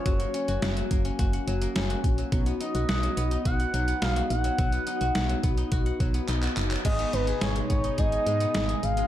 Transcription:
<<
  \new Staff \with { instrumentName = "Analog synth lead" } { \time 4/4 \key b \lydian \tempo 4 = 106 cis''2~ cis''8 r4. | r8 dis''4. fis''4 eis''8 fis''8~ | fis''2~ fis''8 r4. | dis''8 b'8 cis''8 cis''8 dis''4. eis''8 | }
  \new Staff \with { instrumentName = "Analog polysynth" } { \time 4/4 \key b \lydian <ais cis' fis'>1 | <b dis' fis'>1~ | <b dis' fis'>1 | <b dis' gis'>1 | }
  \new Staff \with { instrumentName = "Guzheng" } { \time 4/4 \key b \lydian fis16 ais16 cis'16 fis'16 fis''16 fis16 ais16 cis'16 fis'16 fis''16 fis16 ais16 cis'16 fis'16 r16 fis16 | fis16 b16 dis'16 fis'16 fis''16 fis16 b16 dis'16 fis'16 fis''16 fis16 b16 dis'16 fis'16 r16 fis16 | fis16 b16 dis'16 fis'16 fis''16 fis16 b16 dis'16 fis'16 fis''16 fis16 b16 dis'16 fis'16 r16 fis16 | gis16 b16 dis'16 gis'16 gis''16 gis16 b16 dis'16 gis'16 gis''16 gis16 b16 dis'16 gis'16 r16 gis16 | }
  \new Staff \with { instrumentName = "Analog synth pad" } { \clef bass \time 4/4 \key b \lydian r1 | r1 | r1 | <b, gis dis'>1 | }
  \new Staff \with { instrumentName = "FM bass" } { \clef bass \time 4/4 \key b \lydian fis,,8 r16 fis,,16 fis,,8 fis,,8 fis,,8 fis,,8 fis,,8 ais,,8 | b,,8 r16 b,,16 b,,8 b,,8 b,,8 b,,8 b,,8 ais,,8 | b,,8 r16 b,,16 b,,8 b,,8 b,,8 b,,8 b,,8 fis,,8 | gis,,8 gis,,8 gis,,8 gis,,8 gis,,8 gis,8 gis,,8 gis,,8 | }
  \new DrumStaff \with { instrumentName = "Drums" } \drummode { \time 4/4 <hh bd>16 hh16 hh16 hh16 <hh sn>16 hh16 <hh bd>16 hh16 <hh bd>16 hh16 hh16 hh16 <hh sn>16 hh16 <hh bd>16 hh16 | <hh bd>16 hh16 hh16 hh16 <hh sn>16 hh16 hh16 hh16 <hh bd>16 hh16 hh16 hh16 <hh sn>16 hh16 hh16 hh16 | <hh bd>16 hh16 hh16 hh16 <hh sn>16 hh16 <hh bd>16 hh16 <hh bd>16 hh16 <hh bd>16 hh16 <hc hh>16 <hc hh>16 <hc hh>16 <hc hh>16 | <cymc hh bd>16 hh16 hh16 hh16 <hh sn>16 hh16 <hh bd>16 hh16 <hh bd>16 hh16 hh16 hh16 <hh sn>16 hh16 hh16 hh16 | }
>>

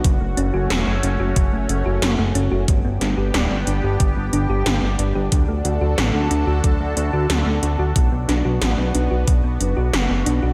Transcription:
<<
  \new Staff \with { instrumentName = "Analog synth pad" } { \time 4/4 \key fis \phrygian \tempo 4 = 91 <a cis' fis'>1 | <b d' g'>1 | <d fis' a'>1 | <b fis'>1 | }
  \new Staff \with { instrumentName = "Synth arpeggio sound" } { \time 4/4 \key fis \phrygian fis16 a16 cis'16 fis'16 fis16 a16 cis'16 fis'16 fis16 a16 cis'16 fis'16 fis16 a16 cis'16 fis'16 | g16 b16 d'16 g'16 g16 b16 d'16 g'16 g16 b16 d'16 g'16 g16 b16 d'16 g'16 | fis16 a16 d'16 fis'16 fis16 a16 d'16 fis'16 fis16 a16 d'16 fis'16 fis16 a16 d'16 fis'16 | fis16 b16 d'16 fis'16 fis16 b16 d'16 fis'16 fis16 b16 d'16 fis'16 fis16 b16 d'16 fis'16 | }
  \new Staff \with { instrumentName = "Analog synth bass" } { \clef bass \time 4/4 \key fis \phrygian fis,,16 fis,,16 fis,,16 fis,,16 e,,16 fis,,16 fis,,16 fis,,16 fis,,16 fis,,16 fis,,16 fis,,16 fis,,16 fis,,16 fis,,16 fis,,16 | g,,16 g,,16 g,,16 g,,16 d,,16 g,,16 g,,16 g,,16 g,,16 g,,16 g,,16 g,,16 g,,16 g,,16 g,,16 g,,16 | d,16 d,16 d,16 d,16 a,,16 d,16 d,16 d,16 d,16 d,16 d,16 d,16 d,16 d,16 d,16 d,16 | b,,16 b,,16 b,,16 b,,16 a,,16 b,,16 b,,16 b,,16 b,,16 b,,16 fis,,16 b,,16 fis,,16 fis,,16 b,,16 b,,16 | }
  \new DrumStaff \with { instrumentName = "Drums" } \drummode { \time 4/4 <hh bd>8 hh8 <hh sn>8 hh8 <hh bd>8 hh8 <hh sn>8 hh8 | <hh bd>8 <hh sn>8 <hh sn>8 hh8 <hh bd>8 hh8 <hh sn>8 hh8 | <hh bd>8 hh8 <hh sn>8 hh8 <hh bd>8 hh8 <hh sn>8 hh8 | <hh bd>8 <hh sn>8 <hh sn>8 hh8 <hh bd>8 hh8 <hh sn>8 hh8 | }
>>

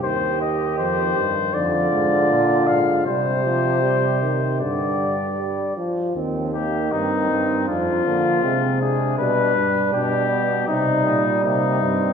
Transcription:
<<
  \new Staff \with { instrumentName = "Trumpet" } { \time 4/4 \key c \minor \tempo 4 = 79 c''8 ees''8 c''4 d''4. f''8 | c''2 d''4. r8 | r8 g'8 ees'4 f'4. aes'8 | b'4 g'4 ees'4 ees'4 | }
  \new Staff \with { instrumentName = "Flugelhorn" } { \time 4/4 \key c \minor g'2 f'2 | g'2 g'4. r8 | c'8 bes8 c'4 d'8 bes8 c'8 d'8~ | d'4 d'8 b8 ees'4 bes8 c'8 | }
  \new Staff \with { instrumentName = "Trombone" } { \clef bass \time 4/4 \key c \minor ees2 d2 | g8 f8 g8 ees8 d4 g8 f8 | ees2 f4 aes4 | g8 g4. g2 | }
  \new Staff \with { instrumentName = "Bass trombone" } { \clef bass \time 4/4 \key c \minor ees,4 f,8 g,8 f,8 aes,8 bes,8 aes,8 | c2 g,4. r8 | ees,4 g,8 g,8 f,8 d8 c4 | b,8 g,8 b,4 c8 bes,8 c8 g,8 | }
>>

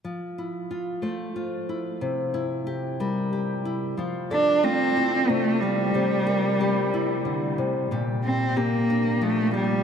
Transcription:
<<
  \new Staff \with { instrumentName = "Nylon-string guitar" } { \time 3/4 \key f \major \tempo 4 = 92 << { r8 e'8 f'8 c''8 f'8 e'8 | r8 e'8 g'8 bes'8 g'8 e'8 | f'8 a'8 f'8 e'4 f'8 | g'8 bes'8 g'8 e'4. |
g'4 g'8 d'4 g'8 | } \\ { f4. a4. | c4. g4. | f4 a4 c4 | c4 g4 d8 c8 |
bes,2 f4 | } >> }
  \new Staff \with { instrumentName = "Cello" } { \time 3/4 \key f \major r2. | r2. | r8 d'8 c'4 a8 g8~ | g2~ g8 r8 |
r8 c'8 bes4 a8 g8 | }
>>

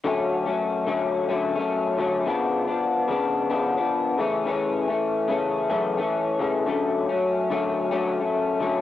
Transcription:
\new Staff \with { instrumentName = "Clean electric guitar" } { \time 4/4 \key d \major \tempo 4 = 109 <d fis a cis'>8. <fis a cis'>8. <d fis a cis'>8. <d fis a cis'>8 <fis a cis'>8. <d fis a cis'>8 | <cis eis b d'>8. <eis b d'>8. <cis eis b d'>8. <cis eis b d'>8 <eis b d'>8. <cis e a cis'>8 | <cis e a cis'>8. <e a cis'>8. <cis e a cis'>8. <fis, cis e a cis'>8 <e a cis'>8. <cis e a cis'>8 | <d fis a cis'>8. <fis a cis'>8. <d fis a cis'>8. <d fis a cis'>8 <fis a cis'>8. <d fis a cis'>8 | }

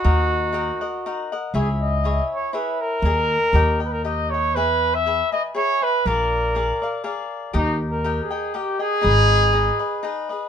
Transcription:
<<
  \new Staff \with { instrumentName = "Cavaquinho" } { \time 3/4 \key dis \phrygian \tempo 4 = 120 <dis' ais' dis'' fis''>4 <dis' ais' dis'' fis''>8 <ais' dis'' fis''>8 <dis' ais' dis'' fis''>8 <ais' dis'' fis''>8 | <e' gis' cis'' e''>4 <e' gis' cis'' e''>4 <e' gis' cis'' e''>4 | <gis' ais' dis'' gis''>4 <g' ais' dis'' g''>8 <ais' dis'' g''>8 <g' ais' dis'' g''>8 <ais' dis'' g''>8 | <gis' b' e'' gis''>4 <gis' b' e'' gis''>8 <b' e'' gis''>8 <gis' b' e'' gis''>8 <b' e'' gis''>8 |
<gis' ais' d'' eis''>4 <gis' ais' d'' eis''>8 <ais' d'' eis''>8 <gis' ais' d'' eis''>4 | <g' ais' dis'' g''>4 <g' ais' dis'' g''>8 <ais' dis'' g''>8 <g' ais' dis'' g''>8 <ais' dis'' g''>8 | <dis' gis' b' dis''>4 <dis' gis' b' dis''>8 <gis' b' dis''>8 <dis' gis' b' dis''>8 <gis' b' dis''>8 | }
  \new Staff \with { instrumentName = "Trumpet" } { \time 3/4 \key dis \phrygian fis'2~ fis'8 r8 | gis'8 dis''4 cis''8 b'8 ais'8~ | ais'4. ais'32 b'32 ais'16 dis''8 cis''8 | b'8. e''8. dis''8 cis''8 b'8 |
ais'2 r4 | \tuplet 3/2 { dis'8. r16 ais'8~ ais'8 gis'4 } g'8 gis'8~ | gis'2~ gis'8 r8 | }
  \new Staff \with { instrumentName = "Upright bass" } { \clef bass \time 3/4 \key dis \phrygian dis,2 r4 | cis,2 r4 | dis,4 dis,2 | e,2 r4 |
ais,,2 r4 | dis,2 r4 | gis,,2 r4 | }
>>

